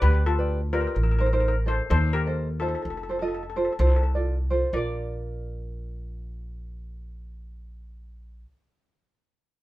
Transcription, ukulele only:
0.01 G4 B4 D5
0.38 G4 B4 D5
0.73 G4 B4 D5
1.20 D#4 A4 C5
1.33 D#4 A4 C5
1.66 D#4 A4 C5
1.90 D#4 A4 D5
2.26 D#4 A4 C5
2.61 D#4 A4 C5
3.09 F4 A4 C5
3.21 F4 A4 D#5
3.56 F4 A4 C5
3.79 F4 A4 C5
4.15 F4 A4 D5
4.50 F4 A4 C5
4.73 F4 A#4 D5

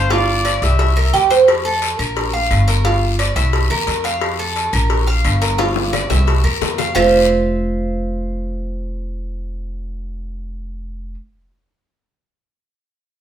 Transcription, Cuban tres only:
Already playing: F5
0.10 F4
0.45 D5
0.79 E5
0.97 A#4
1.13 G4
1.30 C5
1.65 A4
1.99 A#4
2.33 F5
2.68 A#4
2.85 F4
3.19 D5
3.36 E5
3.70 A#4
4.05 F5
4.39 A4
4.73 A#4
5.07 F5
5.42 A#4
5.58 F4
5.93 D5
6.10 E5
6.44 A#4
6.78 F5
6.95 F4 C5 E5

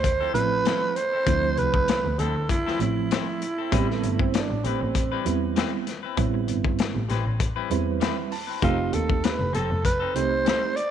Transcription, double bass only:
Already playing: D2
0.34 A1
1.26 D2
1.43 D2
1.57 C2
2.04 D2
2.18 D2
2.35 D2
2.80 A1
3.72 A1
3.88 A1
4.03 G1
4.50 A1
4.64 A1
4.81 A1
5.25 E2
6.18 A1
6.33 A1
6.48 G1
6.94 A1
7.09 A1
7.25 A1
7.70 E2
8.62 F1
8.79 F1
8.92 D#2
9.39 F1
9.53 F1
9.70 F1
10.15 C2

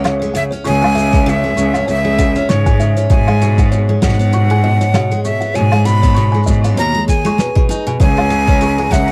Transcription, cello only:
Already playing: C#2
0.65 C#2
1.57 C#2
1.88 C#2
2.49 G#2
3.10 G#2
4.02 G#2
5.55 G#2
6.47 G#2
6.78 D#2
8.01 C#2
8.92 C#2

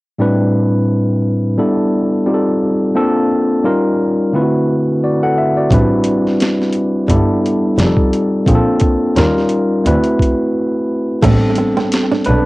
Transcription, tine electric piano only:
0.18 A2 G3 C4 D4 E4 B4
1.58 G3 B3 D4 E4 A4
2.26 G3 C4 D#4 F4 G4
2.34 A4
2.95 A#3 C4 D4 F4 A4
3.64 G3 C#4 D#4 F4 A#4
4.33 D3 A3 C4 E4 F4 B4
4.42 F#4
5.03 F#4 D5
5.23 A4 F#5
5.38 E5
5.57 F#4 D5
5.71 G3 C4 D4 E4 B4
7.09 G3 B3 D4 E4 A4
7.78 G3 C4 D#4 F4 G#4
7.86 A4
8.47 A#3 C4 D4 F4 G#4
8.55 A4
9.16 G3 C#4 D#4 F4 A#4
9.84 A3 C4 E4 F#4 B4
11.22 G3 B3 C4 D4 A4
12.26 D4 B4

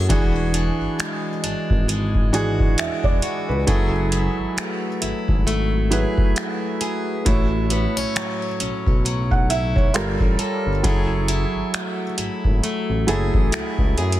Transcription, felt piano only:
Already playing: F#3 E4 G#4 A4
0.09 E3 D4 F#4 G#4
2.33 E3 D4 F#4 G#4
2.78 E5
3.04 D5
3.49 B4
3.67 F#3 E4 G#4 A4
5.91 F#3 E4 G#4 B4
7.25 A3 E4 F#4 C#5
9.31 F#5
9.50 E5
9.76 C#5
9.94 G3 F4 A4 A#4
10.83 F#3 E4 G#4 A4
13.07 F#3 E4 G#4 A4

